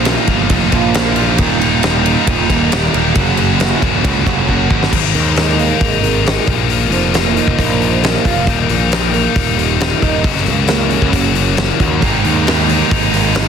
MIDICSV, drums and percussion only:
0, 0, Header, 1, 2, 480
1, 0, Start_track
1, 0, Tempo, 443131
1, 1501, Time_signature, 4, 2, 24, 8
1, 14602, End_track
2, 0, Start_track
2, 0, Title_t, "Drums"
2, 56, Note_on_c, 9, 51, 78
2, 68, Note_on_c, 9, 38, 97
2, 164, Note_off_c, 9, 51, 0
2, 176, Note_off_c, 9, 38, 0
2, 297, Note_on_c, 9, 51, 61
2, 300, Note_on_c, 9, 36, 79
2, 406, Note_off_c, 9, 51, 0
2, 409, Note_off_c, 9, 36, 0
2, 538, Note_on_c, 9, 51, 88
2, 542, Note_on_c, 9, 36, 108
2, 646, Note_off_c, 9, 51, 0
2, 650, Note_off_c, 9, 36, 0
2, 781, Note_on_c, 9, 51, 63
2, 784, Note_on_c, 9, 36, 83
2, 889, Note_off_c, 9, 51, 0
2, 893, Note_off_c, 9, 36, 0
2, 1022, Note_on_c, 9, 51, 91
2, 1034, Note_on_c, 9, 38, 109
2, 1131, Note_off_c, 9, 51, 0
2, 1143, Note_off_c, 9, 38, 0
2, 1255, Note_on_c, 9, 51, 65
2, 1363, Note_off_c, 9, 51, 0
2, 1498, Note_on_c, 9, 51, 93
2, 1503, Note_on_c, 9, 36, 102
2, 1606, Note_off_c, 9, 51, 0
2, 1611, Note_off_c, 9, 36, 0
2, 1749, Note_on_c, 9, 51, 70
2, 1857, Note_off_c, 9, 51, 0
2, 1981, Note_on_c, 9, 51, 88
2, 1993, Note_on_c, 9, 38, 96
2, 2090, Note_off_c, 9, 51, 0
2, 2102, Note_off_c, 9, 38, 0
2, 2228, Note_on_c, 9, 51, 68
2, 2337, Note_off_c, 9, 51, 0
2, 2461, Note_on_c, 9, 51, 98
2, 2464, Note_on_c, 9, 36, 104
2, 2569, Note_off_c, 9, 51, 0
2, 2573, Note_off_c, 9, 36, 0
2, 2704, Note_on_c, 9, 36, 77
2, 2705, Note_on_c, 9, 51, 66
2, 2812, Note_off_c, 9, 36, 0
2, 2814, Note_off_c, 9, 51, 0
2, 2946, Note_on_c, 9, 51, 88
2, 2958, Note_on_c, 9, 38, 112
2, 3054, Note_off_c, 9, 51, 0
2, 3066, Note_off_c, 9, 38, 0
2, 3187, Note_on_c, 9, 51, 69
2, 3295, Note_off_c, 9, 51, 0
2, 3416, Note_on_c, 9, 51, 84
2, 3420, Note_on_c, 9, 36, 106
2, 3525, Note_off_c, 9, 51, 0
2, 3528, Note_off_c, 9, 36, 0
2, 3655, Note_on_c, 9, 51, 61
2, 3763, Note_off_c, 9, 51, 0
2, 3898, Note_on_c, 9, 51, 78
2, 3910, Note_on_c, 9, 38, 110
2, 4006, Note_off_c, 9, 51, 0
2, 4018, Note_off_c, 9, 38, 0
2, 4141, Note_on_c, 9, 36, 77
2, 4143, Note_on_c, 9, 51, 62
2, 4249, Note_off_c, 9, 36, 0
2, 4252, Note_off_c, 9, 51, 0
2, 4382, Note_on_c, 9, 36, 112
2, 4384, Note_on_c, 9, 51, 90
2, 4490, Note_off_c, 9, 36, 0
2, 4492, Note_off_c, 9, 51, 0
2, 4620, Note_on_c, 9, 36, 81
2, 4627, Note_on_c, 9, 51, 60
2, 4728, Note_off_c, 9, 36, 0
2, 4735, Note_off_c, 9, 51, 0
2, 4858, Note_on_c, 9, 36, 62
2, 4967, Note_off_c, 9, 36, 0
2, 5097, Note_on_c, 9, 36, 85
2, 5205, Note_off_c, 9, 36, 0
2, 5229, Note_on_c, 9, 38, 78
2, 5336, Note_on_c, 9, 36, 107
2, 5337, Note_off_c, 9, 38, 0
2, 5338, Note_on_c, 9, 49, 101
2, 5444, Note_off_c, 9, 36, 0
2, 5446, Note_off_c, 9, 49, 0
2, 5473, Note_on_c, 9, 38, 30
2, 5568, Note_on_c, 9, 46, 57
2, 5582, Note_off_c, 9, 38, 0
2, 5676, Note_off_c, 9, 46, 0
2, 5811, Note_on_c, 9, 46, 72
2, 5823, Note_on_c, 9, 38, 97
2, 5919, Note_off_c, 9, 46, 0
2, 5931, Note_off_c, 9, 38, 0
2, 5947, Note_on_c, 9, 38, 29
2, 6055, Note_off_c, 9, 38, 0
2, 6058, Note_on_c, 9, 46, 55
2, 6166, Note_off_c, 9, 46, 0
2, 6293, Note_on_c, 9, 36, 109
2, 6293, Note_on_c, 9, 46, 76
2, 6401, Note_off_c, 9, 46, 0
2, 6402, Note_off_c, 9, 36, 0
2, 6540, Note_on_c, 9, 46, 52
2, 6649, Note_off_c, 9, 46, 0
2, 6787, Note_on_c, 9, 46, 70
2, 6798, Note_on_c, 9, 38, 107
2, 6895, Note_off_c, 9, 46, 0
2, 6907, Note_off_c, 9, 38, 0
2, 7013, Note_on_c, 9, 46, 50
2, 7014, Note_on_c, 9, 36, 99
2, 7122, Note_off_c, 9, 36, 0
2, 7122, Note_off_c, 9, 46, 0
2, 7256, Note_on_c, 9, 46, 71
2, 7365, Note_off_c, 9, 46, 0
2, 7495, Note_on_c, 9, 46, 51
2, 7603, Note_off_c, 9, 46, 0
2, 7735, Note_on_c, 9, 46, 69
2, 7747, Note_on_c, 9, 38, 96
2, 7843, Note_off_c, 9, 46, 0
2, 7855, Note_off_c, 9, 38, 0
2, 7981, Note_on_c, 9, 46, 49
2, 8089, Note_off_c, 9, 46, 0
2, 8098, Note_on_c, 9, 36, 69
2, 8206, Note_off_c, 9, 36, 0
2, 8217, Note_on_c, 9, 36, 94
2, 8227, Note_on_c, 9, 46, 71
2, 8325, Note_off_c, 9, 36, 0
2, 8335, Note_off_c, 9, 46, 0
2, 8468, Note_on_c, 9, 46, 51
2, 8576, Note_off_c, 9, 46, 0
2, 8705, Note_on_c, 9, 46, 74
2, 8717, Note_on_c, 9, 38, 109
2, 8813, Note_off_c, 9, 46, 0
2, 8825, Note_off_c, 9, 38, 0
2, 8938, Note_on_c, 9, 36, 80
2, 8942, Note_on_c, 9, 46, 56
2, 9046, Note_off_c, 9, 36, 0
2, 9050, Note_off_c, 9, 46, 0
2, 9176, Note_on_c, 9, 36, 101
2, 9176, Note_on_c, 9, 46, 73
2, 9284, Note_off_c, 9, 36, 0
2, 9284, Note_off_c, 9, 46, 0
2, 9418, Note_on_c, 9, 46, 55
2, 9526, Note_off_c, 9, 46, 0
2, 9661, Note_on_c, 9, 46, 69
2, 9672, Note_on_c, 9, 38, 102
2, 9769, Note_off_c, 9, 46, 0
2, 9781, Note_off_c, 9, 38, 0
2, 9900, Note_on_c, 9, 46, 52
2, 10008, Note_off_c, 9, 46, 0
2, 10138, Note_on_c, 9, 36, 100
2, 10142, Note_on_c, 9, 46, 77
2, 10247, Note_off_c, 9, 36, 0
2, 10250, Note_off_c, 9, 46, 0
2, 10386, Note_on_c, 9, 46, 53
2, 10495, Note_off_c, 9, 46, 0
2, 10621, Note_on_c, 9, 46, 80
2, 10633, Note_on_c, 9, 38, 110
2, 10729, Note_off_c, 9, 46, 0
2, 10741, Note_off_c, 9, 38, 0
2, 10858, Note_on_c, 9, 36, 77
2, 10858, Note_on_c, 9, 46, 53
2, 10966, Note_off_c, 9, 36, 0
2, 10967, Note_off_c, 9, 46, 0
2, 11095, Note_on_c, 9, 36, 101
2, 11095, Note_on_c, 9, 46, 72
2, 11203, Note_off_c, 9, 46, 0
2, 11204, Note_off_c, 9, 36, 0
2, 11226, Note_on_c, 9, 38, 32
2, 11331, Note_on_c, 9, 46, 52
2, 11334, Note_off_c, 9, 38, 0
2, 11440, Note_off_c, 9, 46, 0
2, 11564, Note_on_c, 9, 46, 69
2, 11576, Note_on_c, 9, 38, 100
2, 11673, Note_off_c, 9, 46, 0
2, 11684, Note_off_c, 9, 38, 0
2, 11814, Note_on_c, 9, 46, 52
2, 11922, Note_off_c, 9, 46, 0
2, 11937, Note_on_c, 9, 36, 70
2, 12045, Note_off_c, 9, 36, 0
2, 12057, Note_on_c, 9, 36, 90
2, 12058, Note_on_c, 9, 46, 68
2, 12165, Note_off_c, 9, 36, 0
2, 12167, Note_off_c, 9, 46, 0
2, 12298, Note_on_c, 9, 46, 52
2, 12406, Note_off_c, 9, 46, 0
2, 12535, Note_on_c, 9, 46, 70
2, 12547, Note_on_c, 9, 38, 112
2, 12643, Note_off_c, 9, 46, 0
2, 12655, Note_off_c, 9, 38, 0
2, 12781, Note_on_c, 9, 46, 50
2, 12782, Note_on_c, 9, 36, 79
2, 12889, Note_off_c, 9, 46, 0
2, 12890, Note_off_c, 9, 36, 0
2, 13021, Note_on_c, 9, 46, 68
2, 13025, Note_on_c, 9, 36, 99
2, 13129, Note_off_c, 9, 46, 0
2, 13133, Note_off_c, 9, 36, 0
2, 13265, Note_on_c, 9, 46, 51
2, 13373, Note_off_c, 9, 46, 0
2, 13508, Note_on_c, 9, 46, 72
2, 13520, Note_on_c, 9, 38, 105
2, 13617, Note_off_c, 9, 46, 0
2, 13629, Note_off_c, 9, 38, 0
2, 13644, Note_on_c, 9, 38, 31
2, 13748, Note_on_c, 9, 46, 55
2, 13752, Note_off_c, 9, 38, 0
2, 13856, Note_off_c, 9, 46, 0
2, 13988, Note_on_c, 9, 36, 114
2, 13990, Note_on_c, 9, 46, 75
2, 14097, Note_off_c, 9, 36, 0
2, 14099, Note_off_c, 9, 46, 0
2, 14230, Note_on_c, 9, 46, 58
2, 14338, Note_off_c, 9, 46, 0
2, 14458, Note_on_c, 9, 46, 79
2, 14470, Note_on_c, 9, 38, 117
2, 14567, Note_off_c, 9, 46, 0
2, 14579, Note_off_c, 9, 38, 0
2, 14602, End_track
0, 0, End_of_file